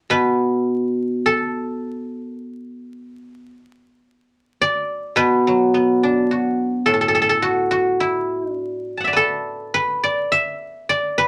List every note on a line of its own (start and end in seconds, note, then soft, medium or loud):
0.10 3.51 B2 medium
0.10 2.15 B4 medium
1.26 2.24 A4 medium
2.24 2.51 A#4 medium
2.51 2.80 A4 medium
2.80 3.06 A#4 medium
3.06 4.03 A4 medium
4.61 6.46 D5 medium
5.16 6.86 B2 medium
5.16 7.21 B4 medium
5.47 7.72 F#3 soft
5.74 8.00 B3 soft
6.03 8.29 D4 soft
6.31 7.41 F#4 soft
6.86 10.30 A2 soft
6.86 6.93 A4 medium
6.94 7.01 A4 medium
7.01 7.08 A4 medium
7.08 7.14 A4 medium
7.15 7.21 A4 medium
7.22 7.29 A4 medium
7.29 9.16 A4 medium
7.42 7.70 F#4 medium
7.71 10.14 F#4 medium
8.00 8.52 E4 medium
8.52 10.61 D4 medium
8.97 10.61 F#5 soft
8.97 10.42 A5 soft
9.04 10.03 D5 soft
9.04 10.31 E5 soft
9.13 11.28 A4 medium
9.13 9.74 B4 soft
9.74 11.18 B4 medium
10.03 10.89 D5 medium
10.32 11.28 E5 medium
10.89 11.28 D5 medium
11.18 11.28 B4 medium